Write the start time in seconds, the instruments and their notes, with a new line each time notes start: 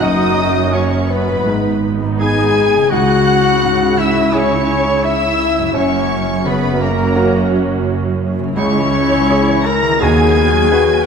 Already playing: harp F#2 C#4 F#4 C#5, viola section F#4
0.00 double bass section F#1, grand piano F#2, cello section F#2, viola section C#4, clarinet D#4, french horn section D#4, violin section D#5 D#6, flute D#5
0.73 clarinet C#4, french horn section C#4, grand piano F#4 C#5, violin section C#5 C#6, flute C#5
1.10 clarinet B3, french horn section B3, violin section B4 B5, flute B4
1.29 harp G#2
1.34 harp B3
1.38 harp D#4
1.43 harp G#4
1.47 double bass section G#1, grand piano G#2, cello section G#2, viola section B3 D#4
2.19 grand piano D#4 G#4, clarinet G#4, french horn section G#4, violin section G#5 G#6, flute G#5
2.75 harp C#3
2.79 harp C#4
2.83 harp E4
2.88 viola section G#3 E4, clarinet F#4, french horn section F#4, harp G#4
2.92 grand piano C#2, double bass section C#2, cello section C#3, flute F#5, violin section F#5 F#6
3.63 grand piano G#2
3.98 clarinet E4, french horn section E4, flute E5, violin section E5 E6
4.33 clarinet C#4, grand piano C#4 E4 G#4, french horn section C#4, flute C#5, violin section C#5 C#6
5.04 clarinet E4, french horn section E4, flute E5, violin section E5 E6
5.59 harp F#2
5.63 harp C#4
5.67 harp F#4
5.72 grand piano F#2, cello section F#2, clarinet C#4, viola section C#4 F#4, harp C#5, flute C#5, violin section C#5
5.76 double bass section F#1, french horn section C#4, violin section C#6
6.45 grand piano C#3, french horn section B3, clarinet B3, violin section B4 B5, flute B4
6.81 french horn section A#3, clarinet A#3, flute A#4, violin section A#4 A#5
7.16 grand piano C#4 F#4 A#4
8.39 harp C#3
8.44 harp C#4
8.48 harp E4
8.53 double bass section C#2, grand piano C#2, cello section C#2, clarinet C#4, harp G#4, flute C#5, violin section C#6
8.57 viola section C#3 E4, french horn section C#4, violin section C#5
8.76 viola section E3
8.93 viola section G#3
9.11 viola section E3
9.30 viola section C#3, grand piano E4 G#4
9.47 viola section E3
9.64 viola section G#3, clarinet A#4, french horn section A#4, flute A#5, violin section A#5 A#6
9.83 harp D#3, viola section E3
9.87 harp B3
9.92 harp F#4
9.96 viola section F#4, clarinet G#4, harp B4
10.00 cello section D#2, double bass section D#2, grand piano D#2, viola section D#3, french horn section G#4, violin section G#5 G#6, flute G#5
10.18 viola section F#3
10.35 viola section B3
10.53 viola section F#3
10.69 viola section D#3, grand piano F#4 B4
10.87 viola section F#3